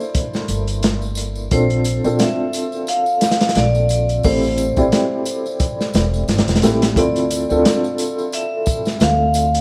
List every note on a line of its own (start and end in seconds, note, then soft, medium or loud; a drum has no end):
0.00 1.52 A#3 medium
0.00 1.52 D4 medium
0.00 1.52 E4 medium
0.00 1.52 A4 medium
0.00 1.48 C5 medium
0.00 tambourine soft
0.15 kick loud
0.15 closed hi-hat medium
0.15 tambourine soft
0.33 snare medium
0.33 tambourine soft
0.48 1.48 G1 medium
0.48 closed hi-hat medium
0.48 tambourine medium
0.67 closed hi-hat soft
0.67 tambourine soft
0.82 snare loud
0.82 closed hi-hat medium
0.82 tambourine soft
1.02 tambourine soft
1.15 closed hi-hat medium
1.15 tambourine medium
1.35 tambourine soft
1.51 2.01 A#1 medium
1.51 2.00 C4 medium
1.51 2.00 D4 medium
1.51 2.00 F4 medium
1.51 2.01 A4 medium
1.51 2.22 C5 medium
1.51 kick loud
1.51 closed hi-hat medium
1.51 tambourine soft
1.70 closed hi-hat soft
1.84 closed hi-hat medium
1.84 tambourine medium
2.04 2.17 A#1 medium
2.04 4.20 C4 medium
2.04 4.20 D4 medium
2.04 4.21 F4 medium
2.04 4.21 A4 medium
2.04 tambourine soft
2.19 2.90 E5 medium
2.19 snare loud
2.19 closed hi-hat medium
2.19 tambourine soft
2.53 closed hi-hat medium
2.53 tambourine medium
2.72 tambourine soft
2.87 3.58 F5 loud
2.87 closed hi-hat medium
2.87 tambourine medium
3.06 tambourine soft
3.21 snare medium
3.21 closed hi-hat medium
3.21 tambourine medium
3.31 snare medium
3.31 closed hi-hat medium
3.41 snare medium
3.41 closed hi-hat medium
3.41 tambourine soft
3.49 snare medium
3.49 closed hi-hat medium
3.55 4.21 A#1 loud
3.55 4.27 D5 medium
3.55 snare loud
3.55 closed hi-hat medium
3.55 tambourine soft
3.75 tambourine soft
3.89 closed hi-hat medium
3.89 tambourine medium
4.09 closed hi-hat soft
4.09 tambourine soft
4.23 4.74 A1 loud
4.23 4.73 C4 medium
4.23 4.73 E4 medium
4.23 4.73 G4 medium
4.23 4.73 A4 medium
4.23 6.59 C5 medium
4.23 kick loud
4.23 open hi-hat medium
4.23 tambourine medium
4.43 tambourine soft
4.58 closed hi-hat medium
4.58 tambourine medium
4.76 4.90 A1 medium
4.76 6.59 C4 medium
4.76 6.59 E4 medium
4.76 6.60 G4 medium
4.76 6.60 D5 medium
4.76 kick medium
4.76 tambourine soft
4.92 snare loud
4.92 closed hi-hat medium
4.92 tambourine soft
5.26 closed hi-hat medium
5.26 tambourine medium
5.46 tambourine soft
5.60 kick loud
5.60 closed hi-hat medium
5.60 tambourine soft
5.81 snare soft
5.81 tambourine soft
5.93 6.28 E1 medium
5.93 snare loud
5.93 closed hi-hat medium
5.93 tambourine medium
6.14 tambourine soft
6.28 6.45 G1 medium
6.28 snare medium
6.28 closed hi-hat medium
6.28 tambourine soft
6.38 snare medium
6.38 closed hi-hat medium
6.47 6.60 E1 medium
6.47 snare medium
6.47 closed hi-hat medium
6.47 tambourine soft
6.56 snare medium
6.56 closed hi-hat medium
6.62 6.93 A1 loud
6.62 6.93 C4 medium
6.62 6.93 E4 medium
6.62 6.93 G4 medium
6.62 6.93 A4 medium
6.62 snare loud
6.62 closed hi-hat medium
6.62 tambourine medium
6.82 snare medium
6.82 closed hi-hat medium
6.82 tambourine soft
6.96 7.46 D2 medium
6.96 7.45 C4 medium
6.96 7.45 E4 medium
6.96 7.46 F4 medium
6.96 7.46 A4 medium
6.96 8.38 D5 medium
6.96 kick loud
6.96 closed hi-hat medium
6.96 tambourine soft
7.16 closed hi-hat soft
7.16 tambourine soft
7.31 closed hi-hat medium
7.31 tambourine loud
7.49 7.63 D2 medium
7.49 9.61 C4 medium
7.49 9.61 D4 medium
7.49 9.61 F4 medium
7.49 9.61 A4 medium
7.49 tambourine soft
7.65 snare loud
7.65 closed hi-hat medium
7.65 tambourine medium
7.84 tambourine soft
7.98 closed hi-hat medium
7.98 tambourine medium
8.18 tambourine soft
8.32 9.04 E5 loud
8.32 closed hi-hat medium
8.32 tambourine medium
8.66 kick medium
8.66 closed hi-hat medium
8.66 tambourine medium
8.85 snare soft
8.85 tambourine soft
9.00 9.61 D2 loud
9.00 9.61 F5 loud
9.00 snare loud
9.00 closed hi-hat medium
9.00 tambourine soft
9.34 closed hi-hat medium
9.34 tambourine loud
9.54 closed hi-hat soft
9.54 tambourine soft